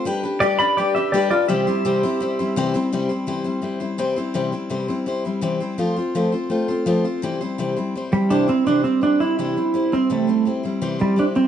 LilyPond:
<<
  \new Staff \with { instrumentName = "Pedal steel guitar" } { \time 4/4 \key c \major \tempo 4 = 167 r4 <g' d''>8 <d'' b''>8 <g' d''>8 <g' e''>8 <g' d''>8 <f' d''>8 | <g' e''>2.~ <g' e''>8 r8 | r1 | r1 |
r1 | r2 r8 g8 d'8 c'8 | d'8 c'8 d'8 e'8 e'4. c'8 | a4 r4. g8 d'8 c'8 | }
  \new Staff \with { instrumentName = "Steel-string acoustic guitar" } { \time 4/4 \key c \major <g d' g' b'>8 <d' g' b'>8 <g d' g' b'>8 <d' g' b'>8 <g d' g' b'>8 <d' g' b'>8 <g d' g' b'>8 <d' g' b'>8 | <c e g c' e' c''>8 <g c' e' c''>8 <c e g c' e' c''>8 <g c' e' c''>8 <g c' e' c''>8 <g c' e' c''>8 <c e g c' e' c''>8 <g c' e' c''>8 | <c e g c' e' c''>8 <g c' e' c''>8 <c e g c' e' c''>8 <g c' e' c''>8 <g c' e' c''>8 <g c' e' c''>8 <c e g c' e' c''>8 <g c' e' c''>8 | <c e g c' e' c''>8 <g c' e' c''>8 <c e g c' e' c''>8 <g c' e' c''>8 <g c' e' c''>8 <g c' e' c''>8 <c e g c' e' c''>8 <g c' e' c''>8 |
<f a c' f' c''>8 <c' f' c''>8 <f a c' f' c''>8 <c' f' c''>8 <a c' f' c''>8 <c' f' c''>8 <f a c' f' c''>8 <c' f' c''>8 | <c e g c' e' c''>8 <g c' e' c''>8 <c e g c' e' c''>8 <g c' e' c''>8 <g c' e' c''>8 <g c' e' c''>8 <c e g c' e' c''>8 <g c' e' c''>8 | <c e g c' e' c''>8 <g c' e' c''>8 <g c' e' c''>8 <g c' e' c''>8 <c e g c' e' c''>8 <g c' e' c''>8 <g c' e' c''>8 <g c' e' c''>8 | <c e g c' e' c''>8 <g c' e' c''>8 <g c' e' c''>8 <g c' e' c''>8 <c e g c' e' c''>8 <g c' e' c''>8 <g c' e' c''>8 <g c' e' c''>8 | }
>>